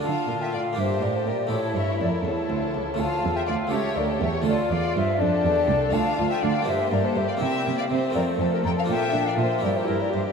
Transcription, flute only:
X:1
M:6/8
L:1/16
Q:3/8=81
K:Dm
V:1 name="Flute"
a3 g f2 e2 d c d2 | ^c2 e2 d2 c6 | a3 g f2 e2 d ^c e2 | d2 f2 e2 d6 |
a3 g f2 e2 d c e f | g3 f e2 d2 c B b a | g3 f e2 d c B d e d |]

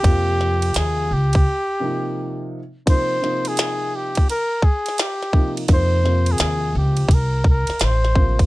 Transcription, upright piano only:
X:1
M:4/4
L:1/8
Q:"Swing 16ths" 1/4=85
K:Fm
V:1 name="Upright piano" clef=bass
[C,F,B,F]3 z2 [C,F,B,E]2 z | [C,F,B,E] [C,F,B,E]3 z3 [C,F,B,E] | [C,F,B,E] [C,F,B,C]3 z3 [C,F,B,C] |]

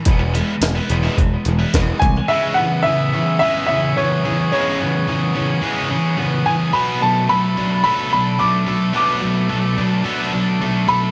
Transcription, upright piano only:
X:1
M:4/4
L:1/8
Q:1/4=108
K:C#phr
V:1 name="Upright piano"
z6 z g | e f e2 e e c2 | c4 z3 g | b a b2 b b d'2 |
d'4 z3 b |]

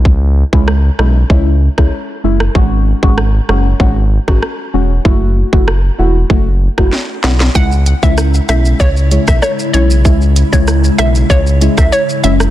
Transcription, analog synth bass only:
X:1
M:4/4
L:1/16
Q:1/4=96
K:C#m
V:1 name="Analog synth bass" clef=bass
C,,3 C,,3 B,,,2 C,,3 C,, z2 F,,,2 | G,,,3 G,,,3 F,,,2 G,,,3 G,,, z2 E,,,2 | F,,,3 F,,,3 E,,,2 F,,,3 F,,, z2 B,,,2 | C,,3 C,,3 B,,,2 C,,3 B,,, z2 B,,,2 |
C,,3 C,,3 B,,,2 C,,3 C,, z2 F,,,2 |]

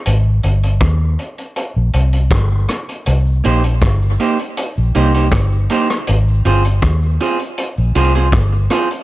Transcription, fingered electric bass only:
X:1
M:4/4
L:1/16
Q:1/4=80
K:Ablyd
V:1 name="Fingered electric bass" clef=bass
A,,,2 G,,,2 E,,2 z3 B,,, C,,2 G,,,2 z2 | C,,2 B,,,2 G,,,2 z3 B,,, C,,2 G,,,2 z2 | A,,,2 G,,,2 E,,2 z3 B,,, C,,2 G,,,2 z2 |]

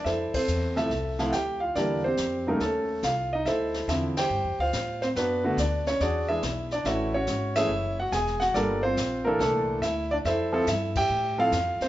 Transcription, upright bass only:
X:1
M:4/4
L:1/8
Q:"Swing" 1/4=141
K:F
V:1 name="Upright bass" clef=bass
F,, z E,,2 C,,2 D,,2 | E,,2 F,,2 _E,,2 C,,2 | D,,2 E,,2 (3G,, F,, D,, A,,2 | ^F,,2 D,,2 E,,2 =B,,,2 |
A,,,2 _A,,,2 ^F,,,2 E,,,2 | G,,,2 B,,,2 C,,2 D,,2 | F,,2 G,,2 A,,2 F,, z |]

